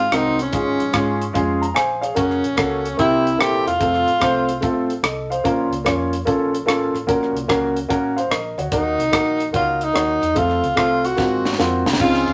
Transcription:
Already playing: G#2 F4
0.12 C2 C4 D#4 F#4 A#4, cross-stick, closed hi-hat
0.38 C#4, cross-stick, closed hi-hat
0.52 G#1 G#2 G#3 C#4 F4 G#4, kick, closed hi-hat
0.80 A#1, closed hi-hat
0.93 G#2 G#3 C#4 F4 G#4, kick, cross-stick, closed hi-hat
1.22 closed hi-hat
1.33 F2 G#3 C#4 F4 G#4, kick, closed hi-hat
1.62 A#5, closed hi-hat
1.75 A#1 C5 F5 G#5, cross-stick, closed hi-hat
2.01 G#4 C#5 F5, cross-stick, closed hi-hat
2.14 F#1 A#3 C#4 F#4 A#4, kick, closed hi-hat
2.31 cross-stick
2.44 A#1, closed hi-hat
2.56 C#2 A#3 C#4 F#4 A4, kick, cross-stick, closed hi-hat
2.85 closed hi-hat
2.97 C2 C3 A#3 C4 E4 G4, kick, closed hi-hat
3.27 closed hi-hat
3.38 A#1 A#3 C4 E4 G4 A4, cross-stick, closed hi-hat
3.67 E1 F4, cross-stick, closed hi-hat
3.79 F1 A3 C4 F4 A4, kick, closed hi-hat
3.94 cross-stick
4.08 closed hi-hat
4.20 C2 A3 C4 F4 C5, kick, cross-stick, closed hi-hat
4.49 closed hi-hat
4.61 A1 A3 C4 F4 A4, kick, closed hi-hat
4.90 closed hi-hat
5.03 C2 A4 D#5, cross-stick, closed hi-hat
5.30 C5 F5, closed hi-hat
5.44 A#1 A#2 A#3 C#4 F4 A#4, kick, closed hi-hat
5.71 C#2, closed hi-hat
5.84 F2 A#3 C#4 F4 C#5, kick, cross-stick, closed hi-hat
6.13 closed hi-hat
6.25 A#3 C#4 F4 A4, kick, closed hi-hat
6.54 closed hi-hat
6.66 A1 A#3 C#4 F4 A4, cross-stick, closed hi-hat
6.94 A1, cross-stick, closed hi-hat
7.07 A#1 A#2 A#3 C#4 F#4 A#4, kick, closed hi-hat
7.23 cross-stick
7.35 C2, closed hi-hat
7.48 C#2 A#3 C#4 F#4 A#4, kick, cross-stick, closed hi-hat
7.76 closed hi-hat
7.88 A1 A#3 C#4 F#4 A#4, kick, closed hi-hat
8.16 C5 F5, closed hi-hat
8.30 A#1 A#4 D#5, cross-stick, closed hi-hat
8.58 D2 F#4 C#5, cross-stick, closed hi-hat
8.71 D#2 D#3 A#3 D#4 F#4 A#4, kick, closed hi-hat
8.99 C2, closed hi-hat
9.12 A#1 A#3 D#4 F#4 A#4, kick, cross-stick, closed hi-hat
9.40 closed hi-hat
9.53 C#2 A#3 D#4 F4 F#4 C#5, kick, closed hi-hat
9.81 D#4, closed hi-hat
9.93 D#2 A#3 D#4 F#4 C#5, cross-stick, closed hi-hat
10.22 E2, cross-stick, closed hi-hat
10.35 F2 A3 C4 F4 A4, kick, closed hi-hat
10.50 cross-stick
10.63 C#2, closed hi-hat
10.76 A3 C4 F4 A4, kick, cross-stick, closed hi-hat
11.04 F#4, closed hi-hat
11.16 G#1 G#2 A#3 C4 F4 F#4, kick, snare
11.45 snare
11.53 snare
11.58 F2 A#3 C4 F4 F#4, snare
11.85 C2, snare
11.93 snare
11.99 C#2 C#3 G#3 C4 C#4 D#4 F4, kick, crash
12.14 snare
12.26 D#2, ride

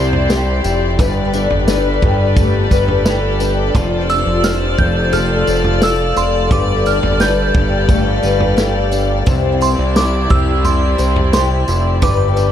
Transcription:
Already playing: C2 C3 C4 E4 G4 C5 D5
0.13 floor tom
0.30 G4, snare, tambourine
0.64 F1 E4, tambourine
0.99 G1 G3 G4 A4 B4 D5, kick, floor tom, tambourine
1.33 D4, tambourine
1.50 G1, floor tom
1.68 B4, snare, tambourine
2.02 G1 G4, kick, floor tom
2.36 A3, kick, floor tom, tambourine
2.71 G1 B4, kick, tambourine
2.88 floor tom
3.06 G4, snare, tambourine
3.40 D4, tambourine
3.75 F1 F3 F4 G4 C5, kick, floor tom, tambourine
3.85 A5
4.09 D4 E6, tambourine
4.26 F1
4.44 C5 F6, snare, tambourine
4.78 F1 A4 G6, kick, floor tom
5.13 A3 F6, floor tom, tambourine
5.35 F5
5.40 A5
5.47 F1 C5, tambourine
5.64 floor tom
5.82 A4 E6, snare, tambourine
6.16 F1 D4 C6, tambourine
6.51 G1 G3 G4 A4 B4 D6, kick, floor tom, tambourine
6.86 D4 F6, tambourine
7.03 G1, floor tom
7.20 B4 G6, snare, tambourine
7.41 F5
7.54 G1 G4, kick, floor tom
7.89 A3, kick, floor tom, tambourine
8.23 G1 B4, tambourine
8.40 floor tom
8.57 G4, snare, tambourine
8.92 D4, tambourine
9.26 C2 C3 C4 E4 C5, kick, floor tom, tambourine
9.35 D5
9.61 E4 C6, tambourine
9.79 C2
9.96 D6, snare, tambourine
10.30 C2 G4 E6, kick, floor tom
10.65 C6, floor tom, tambourine
10.98 C2 C5, tambourine
11.16 floor tom
11.33 G4 C6, snare, tambourine
11.68 F1 E4, tambourine
12.02 G1 G3 G4 A4 B4 D6, kick, floor tom, tambourine
12.14 E5
12.36 D4, tambourine

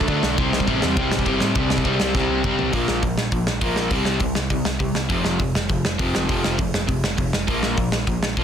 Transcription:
0.01 kick
0.07 D2 D3 A3 D4, kick, ride
0.23 B1, snare
0.37 C2 C3 G3 C4, kick, ride
0.53 C2, snare
0.60 kick
0.67 A1 C3 G3 C4, kick, ride
0.82 E2, snare
0.96 C2 C3 G3 C4, kick, ride
1.11 A1, snare
1.19 kick
1.26 G1 C3 G3 C4, kick, ride
1.40 A2, snare
1.55 C2 C3 G3 C4, kick, ride
1.70 C2, snare
1.78 kick
1.84 C2 C3 G3 C4, kick, ride
2.00 C2, snare
2.15 C2 C3 G3 C4, kick, snare
2.30 C2
2.44 C2 C3 G3 C4, kick, mid tom
2.59 C2, floor tom
2.73 A#1 A#2 F3 A#3, kick, open hi-hat
2.88 A#1, snare
3.02 A#1 A#2 F3, kick, open hi-hat
3.17 A#1, snare
3.32 A#1 A#2 F3, kick, open hi-hat
3.47 A#1, snare
3.61 A#1 A#2 F3 A#3, kick, open hi-hat
3.76 A#1, snare
3.90 C2 C3 G3 C4, kick, open hi-hat
4.05 C2, snare
4.20 C2 C3 G3, kick, open hi-hat
4.35 C2, snare
4.50 C2 C3 G3, kick, open hi-hat
4.65 C2, snare
4.80 C2 C3 G3, kick, open hi-hat
4.94 C2, snare
5.09 F1 F2 C3 F3, kick, open hi-hat
5.24 F1, snare
5.39 F1 F2 C3, kick, open hi-hat
5.54 F1, snare
5.69 F1 F2 C3, kick, open hi-hat
5.85 F1, snare
5.99 F1 F2 C3 F3, kick, open hi-hat
6.15 F1, snare
6.29 F1 F2 C3 F3, kick, open hi-hat
6.44 F1, snare
6.58 F1 F2 C3, kick, open hi-hat
6.74 F1, snare
6.88 F1 F2 C3, kick, open hi-hat
7.04 F1, snare
7.18 F1 F2 C3, kick, open hi-hat
7.33 F1, snare
7.47 A#1 A#2 F3 A#3, kick, open hi-hat
7.63 A#1, snare
7.77 A#1 A#2 F3, kick, open hi-hat
7.91 A#1, snare
8.07 A#1 A#2 F3, kick, open hi-hat
8.23 A#1, snare
8.37 A#1 A#2 F3 A#3, kick, open hi-hat

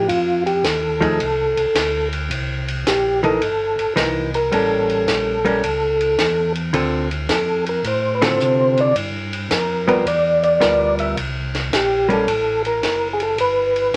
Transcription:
0.08 F2 F4, ride
0.46 G4, ride
0.64 D#2 A4, snare, hi-hat pedal, ride
1.01 F3 A3 D#4 G#4, kick, ride
1.20 C2, ride
1.57 C2, ride
1.75 D2, snare, hi-hat pedal, ride
2.13 ride
2.30 C2, ride
2.68 ride
2.86 A#1 G4, snare, hi-hat pedal, ride
3.23 E3 A#3 D#4 A4, ride
3.41 G1, ride
3.78 G1, ride
3.96 C2 E3 A#3 D#4, snare, hi-hat pedal, ride
4.34 A#4, ride
4.52 A1 G3 A#3 C#4 A4, ride
4.89 ride
5.07 A#1, snare, hi-hat pedal, ride
5.45 G3 A#3 C#4, ride
5.63 C#2, ride
6.01 ride
6.18 E2, snare, hi-hat pedal, ride
6.55 ride
6.73 D2 D3 C4 F4 A4, ride
7.11 ride
7.29 F2 A4, snare, hi-hat pedal, ride
7.66 A#4, ride
7.84 A2 C5, ride
8.15 B4
8.22 D3 C4 F4 A4 C5, snare, ride
8.39 C3, hi-hat pedal
8.77 D5, ride
8.95 G2, ride
9.33 ride
9.51 F2 A#4, snare, hi-hat pedal, ride
9.88 G3 B3 F4 A#4 B4, ride
10.05 E2 D5, ride
10.43 D5, ride
10.60 D2 G3 B3 F4 A#4, snare, hi-hat pedal, ride
10.99 E5, ride
11.16 C2, ride
11.55 snare, ride
11.71 A#1 G4, snare, hi-hat pedal, ride
12.09 G3 A#3 C#4 A4, ride
12.27 A1, ride
12.65 A#4, ride
12.82 F#1, snare, hi-hat pedal, ride
13.13 G#4
13.20 A4, ride
13.37 G1 B4, ride
13.76 ride
13.93 A1

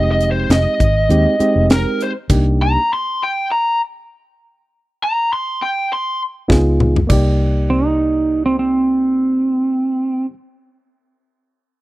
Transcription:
Already playing: F1 G#3 C4 D#4 G4 D#5
0.12 D#5
0.21 closed hi-hat
0.32 C5
0.50 F1 D#5, snare, closed hi-hat
0.80 G#1, kick, closed hi-hat
1.09 D#2 G#3 C4 D#4 G4, closed hi-hat
1.39 G#3 C4 D#4 G4, muted fingered electric bass stroke, closed hi-hat
1.56 F1
1.70 A#4, snare, closed hi-hat
2.00 C5, closed hi-hat
2.30 C2 A#3 D4 D#4 G4, kick, closed hi-hat, crash
2.62 A#5
2.93 C6
3.24 G5
3.52 A#5
5.04 A#5
5.33 C6
5.62 G5
5.93 C6
6.48 C#2 B3 D#4 F4 G#4, kick, snare
6.80 mid tom
6.96 floor tom
7.07 C2 A#3 D#4 D5, kick, crash
7.13 G4
7.70 C4
7.85 D#4
8.46 C4
8.59 C4

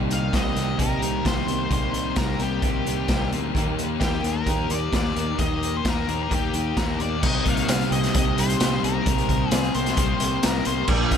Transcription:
Already playing: C2 C3 D#3 G3 A#3 C4 D#4 G4 A#4 G5 A#5 C6
0.10 D#4 F5, closed hi-hat
0.32 C2 C3 D#3 G3 A#3 D#4 D#5, kick, snare, closed hi-hat
0.37 G3 C4 G4
0.55 C2 A#3 C4, snare, closed hi-hat
0.61 G3
0.77 C2 C3 D#3 G3 D#4 G4 A#4, kick, closed hi-hat
0.81 G3 C4 G4
1.00 C2 D#4 G4, closed hi-hat
1.04 G3 C4
1.22 C2 D#3 G3 A#3 D#4, kick, snare, closed hi-hat
1.26 G4 C5
1.47 C2 A#3 C4, closed hi-hat
1.52 G3
1.69 C2 C3 D#3 G3 A#3 C4 D#4 G4 C5, kick, closed hi-hat
1.93 D#4, closed hi-hat
2.15 C2 C3 D#3 G3 A#3 D#4 G4 A#4, kick, snare, closed hi-hat
2.19 C4
2.39 C2 A#3 C4 G4, closed hi-hat
2.43 G3
2.60 C2 C3 D#3 G3 D#4 G4, kick, closed hi-hat
2.64 G3 C4 G4
2.84 C2 G3 C4 D#4 G4, closed hi-hat
2.90 G3
3.07 C2 D#3 G3 A#3 D#4 G4, kick, snare, closed hi-hat
3.31 D2 G3 A#3 C4, closed hi-hat
3.54 D#2 D#3 A#3 D#4 G5 D6, kick, closed hi-hat
3.58 G4
3.79 closed hi-hat
4.00 D#2 D#3 A#3 D#4 G4, kick, snare, closed hi-hat
4.23 D#2 A#3 D#4 A#4, closed hi-hat
4.46 D#2 D#3 A#3 D#4 G4, kick, closed hi-hat
4.51 G4
4.70 D#2 A#3 D#4 G4 D5, closed hi-hat
4.75 A#3
4.92 D#2 D#3 A#3 D#4 D5, kick, snare, closed hi-hat
4.97 G4
5.16 D#2 A#3 D#4, closed hi-hat
5.38 D#2 D#3 A#3 D#5, kick, closed hi-hat
5.42 D#4 G4
5.63 closed hi-hat
5.77 C5
5.85 D#2 D#3 A#3 D#4 G4, kick, snare, closed hi-hat
5.89 D#4 A#4
6.07 D#2 A#3 D#4, closed hi-hat
6.11 A#3
6.23 A#4
6.29 D#2 D#3 A#3 D#4 G4, kick, closed hi-hat
6.33 A#3 D#4 G4
6.54 D#2 A#3 D#4 G4, closed hi-hat
6.58 A#3
6.77 D#2 D#3 A#3 D#4 G4 A#4, kick, snare, closed hi-hat
7.00 D#2 A#3 D#4 D5, closed hi-hat
7.04 A#3
7.22 C2 C3 D#3 G3 C4 D#4 G4 A#4 G5 C6 D#6, kick, crash
7.27 D#5
7.45 C2 A#3 F5, kick, closed hi-hat
7.57 closed hi-hat
7.68 C2 C3 C4, snare, closed hi-hat
7.72 G3 C4
7.81 closed hi-hat
7.91 C2 A#3 D#5, closed hi-hat
8.04 snare, closed hi-hat
8.13 C2 C3 G3 C4 G4 D#5, kick, closed hi-hat
8.37 C2 G3 C4 C5, closed hi-hat
8.49 closed hi-hat
8.60 C2 C3 D#3 G3, snare, closed hi-hat
8.64 C4
8.83 C2 A#3 A#4, closed hi-hat
9.05 C2 C3 D#3 G3, kick, closed hi-hat
9.09 C4
9.18 closed hi-hat
9.29 C2 A#3, kick, closed hi-hat
9.51 C2 C3 G3 C4 G#4, snare, closed hi-hat
9.63 closed hi-hat
9.74 C2 A#3 C5, closed hi-hat
9.86 snare, closed hi-hat
9.96 C2 C3 G3 C4 G4 C5, kick, closed hi-hat
10.20 C2 G3 C4, closed hi-hat
10.43 C2 C3 D#3 G3 C4 A#4, snare, closed hi-hat
10.65 C2 A#3 C5, closed hi-hat
10.88 A#1 A#2 D3 F3 A#3 D4 G#4 D5, kick, crash
11.11 A#1 G#3 F5, kick, closed hi-hat

